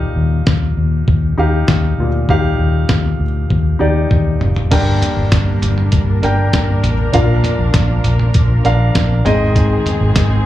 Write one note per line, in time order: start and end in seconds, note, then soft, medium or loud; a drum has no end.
0.00 0.43 A#2 medium
0.00 0.53 D#4 medium
0.00 0.53 G4 medium
0.00 0.54 F5 medium
0.16 0.41 D#2 medium
0.47 0.72 D#2 medium
0.47 kick medium
0.47 snare medium
0.77 1.02 D#2 medium
1.08 1.33 D#2 medium
1.08 kick loud
1.38 1.63 D#2 medium
1.38 2.08 D#4 medium
1.38 2.08 G4 medium
1.38 2.09 F5 medium
1.68 1.93 D#2 medium
1.68 kick medium
1.68 snare loud
1.98 2.23 D2 medium
1.98 2.86 A#2 medium
2.29 2.54 D#2 medium
2.29 3.22 D#4 medium
2.29 3.23 G4 medium
2.29 3.23 F5 medium
2.29 kick medium
2.59 2.84 D#2 medium
2.89 3.14 D#2 medium
2.89 kick medium
2.89 snare medium
3.20 3.45 D2 medium
3.50 3.75 D#2 medium
3.50 kick medium
3.79 4.05 D#2 medium
3.79 4.50 D#4 medium
3.79 4.50 G4 medium
3.79 4.51 D5 medium
4.11 4.36 D#2 medium
4.11 kick medium
4.11 high tom soft
4.41 4.66 F1 medium
4.41 mid tom medium
4.56 floor tom medium
4.71 4.96 G1 medium
4.71 5.58 G2 medium
4.71 5.58 D3 medium
4.71 7.12 G3 medium
4.71 9.22 A#3 medium
4.71 5.65 D4 medium
4.71 9.22 D4 medium
4.71 5.65 A#4 medium
4.71 9.22 A#4 medium
4.71 5.65 G5 medium
4.71 kick medium
4.71 closed hi-hat medium
4.71 crash medium
5.02 closed hi-hat medium
5.02 floor tom medium
5.17 5.29 G1 medium
5.32 5.57 G1 medium
5.32 kick medium
5.32 snare loud
5.32 closed hi-hat medium
5.62 5.87 G1 medium
5.62 closed hi-hat medium
5.62 floor tom medium
5.78 floor tom soft
5.92 6.17 G1 medium
5.92 kick loud
5.92 closed hi-hat medium
6.22 6.47 G1 medium
6.22 6.93 D4 medium
6.22 6.93 A#4 medium
6.22 6.94 G5 medium
6.22 closed hi-hat medium
6.53 6.78 G1 medium
6.53 kick medium
6.53 snare medium
6.53 closed hi-hat medium
6.83 7.08 A1 medium
6.83 closed hi-hat medium
6.83 floor tom medium
7.13 7.39 A#1 medium
7.13 8.01 A#2 medium
7.13 9.23 F3 medium
7.13 8.01 F3 medium
7.13 8.07 D4 medium
7.13 8.07 A#4 medium
7.13 8.07 F5 medium
7.13 kick medium
7.13 closed hi-hat medium
7.44 closed hi-hat medium
7.44 floor tom medium
7.59 7.71 A#1 medium
7.74 7.99 A#1 medium
7.74 kick loud
7.74 snare medium
7.74 closed hi-hat medium
8.04 8.29 A#1 medium
8.04 closed hi-hat medium
8.04 floor tom medium
8.19 floor tom medium
8.34 8.60 A#1 loud
8.34 kick loud
8.34 closed hi-hat medium
8.64 8.90 A#1 medium
8.64 9.25 D4 medium
8.64 9.26 A#4 medium
8.64 9.26 F5 medium
8.64 closed hi-hat medium
8.95 9.20 A#1 medium
8.95 kick medium
8.95 snare loud
8.95 closed hi-hat medium
9.24 9.75 G#1 loud
9.24 10.13 G#2 medium
9.24 10.46 D#3 medium
9.24 10.13 D#3 medium
9.24 10.46 G#3 medium
9.24 10.46 C4 medium
9.24 10.22 C4 medium
9.24 10.46 G#4 medium
9.24 10.23 G#4 medium
9.24 10.23 D#5 medium
9.24 closed hi-hat medium
9.24 floor tom medium
9.56 kick medium
9.56 closed hi-hat medium
9.86 closed hi-hat medium
9.86 floor tom medium
10.01 10.13 G#1 medium
10.16 10.41 G#1 medium
10.16 kick medium
10.16 snare loud
10.16 closed hi-hat medium